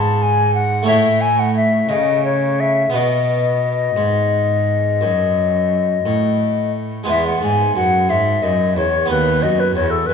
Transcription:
Already playing: harpsichord G#2 G#3 E4 B4, cello G#2, flute A5
0.22 flute G#5
0.55 flute F#5
0.83 harpsichord A3 E4 C#5
0.87 cello A2, harpsichord A2, flute E5
1.21 flute G#5
1.39 flute F#5
1.56 flute E5
1.89 cello C#3, harpsichord C#3, flute D#5
2.25 flute C#5
2.60 flute E5
2.90 cello B2, harpsichord B2 B3 B4
2.94 flute D#5
3.96 harpsichord G#2, cello G#2
5.01 harpsichord F#2, cello F#2
6.05 cello A2, harpsichord A2
7.04 harpsichord G#3 B3 B4
7.08 harpsichord E2, cello E2, flute E5
7.27 flute F#5
7.42 harpsichord G#2, cello G#2, flute G#5
7.76 harpsichord F#2, cello F#2, flute F#5
8.09 harpsichord G#2, cello G#2, flute E5
8.43 harpsichord F#2, cello F#2, flute D#5
8.76 cello E2, harpsichord E2, flute C#5
9.06 harpsichord D#2 B3 B4
9.10 cello D#2, flute B4
9.42 harpsichord F#2, cello F#2, flute D#5
9.60 flute B4
9.75 cello E2, harpsichord E2, flute C#5
9.90 flute A4
10.06 cello F#2, harpsichord F#2, flute B4

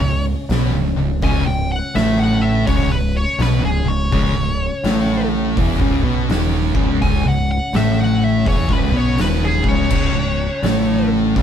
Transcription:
Already playing: tonewheel organ C#3 C#4, lead electric guitar C#5
0.00 picked electric bass C#1, distorted electric guitar C#2
0.49 picked electric bass B1, distorted electric guitar B2 B3, snare, open hi-hat
0.72 picked electric bass C#1, distorted electric guitar C#2
0.95 picked electric bass C#1, distorted electric guitar C#2
1.22 picked electric bass C#1, distorted electric guitar C#2 C#3, lead electric guitar G#5, kick, open hi-hat
1.44 picked electric bass C#1, distorted electric guitar C#2, lead electric guitar G5
1.72 lead electric guitar F#5
1.95 picked electric bass A1, distorted electric guitar A2 A3, lead electric guitar E5, snare, open hi-hat
2.19 lead electric guitar F#5
2.41 lead electric guitar E5
2.67 picked electric bass C#1, distorted electric guitar C#2 C#3, lead electric guitar C#5, kick, open hi-hat
2.90 picked electric bass C#1, distorted electric guitar C#2, lead electric guitar B4
3.16 lead electric guitar C#5
3.38 picked electric bass B1, distorted electric guitar B2 B3, lead electric guitar B4, snare, open hi-hat
3.60 picked electric bass C#1, distorted electric guitar C#2
3.65 lead electric guitar G#4
3.83 picked electric bass C#1, distorted electric guitar C#2
3.88 lead electric guitar C#5
4.12 picked electric bass C#1, distorted electric guitar C#2 C#3, kick, open hi-hat
4.33 picked electric bass C#1, distorted electric guitar C#2
4.84 picked electric bass A1, distorted electric guitar A2 A3, snare, open hi-hat
5.57 picked electric bass E1, distorted electric guitar E2 E3, kick, open hi-hat
5.79 picked electric bass C#1, distorted electric guitar C#2 C#3, kick
6.02 picked electric bass B1, distorted electric guitar B2 B3
6.30 picked electric bass D#1, distorted electric guitar D#2 D#3, snare, open hi-hat
6.75 picked electric bass C#1, distorted electric guitar C#2 C#3, kick
7.02 picked electric bass C#1, distorted electric guitar C#2 C#3, lead electric guitar G#5, kick, open hi-hat
7.23 picked electric bass C#1, distorted electric guitar C#2
7.28 lead electric guitar F#5
7.51 lead electric guitar F#5
7.73 picked electric bass A1, distorted electric guitar A2 A3, lead electric guitar E5, snare, open hi-hat
8.00 lead electric guitar F#5
8.24 lead electric guitar E5
8.46 picked electric bass E1, distorted electric guitar E2 E3, lead electric guitar C#5, kick, open hi-hat
8.69 picked electric bass C#1, distorted electric guitar C#2 C#3, kick
8.73 lead electric guitar B4
8.90 picked electric bass B1, distorted electric guitar B2 B3
8.96 lead electric guitar C#5
9.18 picked electric bass D#1, distorted electric guitar D#2 D#3, lead electric guitar B4, snare, open hi-hat
9.45 lead electric guitar G#4
9.64 picked electric bass C#1, distorted electric guitar C#2 C#3, kick
9.69 lead electric guitar C#5
9.90 picked electric bass C#1, distorted electric guitar C#2 C#3, kick, crash
10.12 picked electric bass C#1, distorted electric guitar C#2
10.62 picked electric bass A1, distorted electric guitar A2 A3, snare, open hi-hat
11.36 picked electric bass C#1, distorted electric guitar C#2 C#3, kick, open hi-hat

